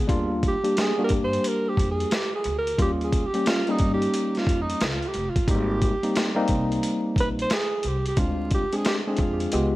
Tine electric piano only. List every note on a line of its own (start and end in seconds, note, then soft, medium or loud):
0.00 0.29 B3 medium
0.00 0.29 G#4 medium
0.07 0.54 G3 medium
0.07 0.54 A#3 medium
0.07 0.54 D4 medium
0.07 0.55 F4 loud
0.63 0.91 G3 medium
0.63 0.91 A#3 medium
0.63 0.92 D4 medium
0.63 0.92 G4 medium
0.98 2.09 G3 medium
0.98 2.09 A#3 medium
0.98 2.09 D4 medium
0.98 1.03 F#4 medium
1.06 2.13 G4 medium
2.78 3.24 G3 medium
2.78 3.24 A#3 medium
2.78 3.24 C#4 medium
2.78 3.24 F4 medium
3.34 3.61 G3 medium
3.34 3.61 A#3 medium
3.34 3.62 C#4 medium
3.34 3.62 G4 medium
3.68 4.79 G3 medium
3.68 4.79 A#3 medium
3.68 4.79 C#4 medium
3.68 4.79 D#4 medium
5.48 5.93 G3 medium
5.48 5.94 A#3 medium
5.48 5.94 C4 medium
5.48 5.94 D#4 medium
6.03 6.31 G3 medium
6.03 6.31 A#3 medium
6.03 6.31 C4 medium
6.03 6.31 D#4 medium
6.35 7.47 G3 medium
6.35 7.47 A#3 medium
6.35 7.47 C4 medium
6.35 7.48 D#4 loud
8.17 8.63 G#3 medium
8.17 8.63 C4 medium
8.17 8.63 D4 medium
8.17 8.64 F4 medium
8.73 9.00 G#3 medium
8.73 9.00 C4 medium
8.73 9.00 D4 medium
8.73 9.01 G#4 medium
9.07 9.51 G#3 medium
9.07 9.53 C4 medium
9.07 9.53 D4 medium
9.07 9.53 G#4 medium
9.53 9.76 G#3 medium
9.53 9.76 B3 medium
9.53 9.76 F4 medium
9.53 9.76 G4 medium